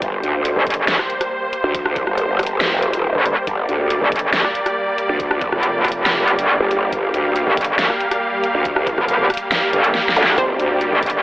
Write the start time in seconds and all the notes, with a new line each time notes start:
Already playing: G3 A#3 G4
0.02 G1 C5, kick, closed hi-hat
0.23 D2, closed hi-hat
0.45 closed hi-hat
0.56 G1
0.67 kick, closed hi-hat
0.70 closed hi-hat
0.74 closed hi-hat
0.88 snare, closed hi-hat
0.99 cross-stick
1.10 closed hi-hat
1.21 cross-stick, closed hi-hat
1.53 closed hi-hat
1.64 D2
1.75 kick, closed hi-hat
1.86 cross-stick
1.96 kick, closed hi-hat
2.07 G1, cross-stick
2.18 closed hi-hat
2.29 G1
2.39 kick, cross-stick, closed hi-hat
2.43 closed hi-hat
2.47 closed hi-hat
2.61 snare, closed hi-hat
2.72 F1
2.82 closed hi-hat
2.93 closed hi-hat
3.15 G1
3.26 closed hi-hat
3.47 G1 D5, kick, closed hi-hat
3.69 D2, closed hi-hat
3.90 closed hi-hat
4.01 G1
4.12 kick, closed hi-hat
4.16 closed hi-hat
4.19 closed hi-hat
4.34 snare, closed hi-hat
4.45 cross-stick
4.55 closed hi-hat
4.66 cross-stick, closed hi-hat
4.98 closed hi-hat
5.09 D2
5.20 kick, closed hi-hat
5.31 cross-stick
5.41 kick, closed hi-hat
5.52 F1, cross-stick
5.63 closed hi-hat
5.85 kick, cross-stick, closed hi-hat
5.88 closed hi-hat
5.92 closed hi-hat
6.06 snare, closed hi-hat
6.28 closed hi-hat
6.39 G1, closed hi-hat
6.60 G1
6.71 closed hi-hat
6.93 G1 F5, kick, closed hi-hat
7.14 D2, closed hi-hat
7.36 closed hi-hat
7.47 G1
7.57 kick, closed hi-hat
7.61 closed hi-hat
7.64 closed hi-hat
7.79 snare, closed hi-hat
7.90 cross-stick
8.01 closed hi-hat
8.11 cross-stick, closed hi-hat
8.44 closed hi-hat
8.55 D2
8.65 kick, closed hi-hat
8.76 cross-stick
8.87 kick, closed hi-hat
8.98 F1, cross-stick
9.08 closed hi-hat
9.30 kick, cross-stick, closed hi-hat
9.34 closed hi-hat
9.37 closed hi-hat
9.52 snare, closed hi-hat
9.73 G1, closed hi-hat
9.84 closed hi-hat
9.95 snare
10.09 snare
10.16 D2, closed hi-hat, zap
10.24 snare, closed hi-hat
10.38 G1 C4 C5 D5, kick, closed hi-hat
10.59 D2, closed hi-hat
10.81 closed hi-hat
10.92 G1
11.03 kick, closed hi-hat
11.06 closed hi-hat
11.10 closed hi-hat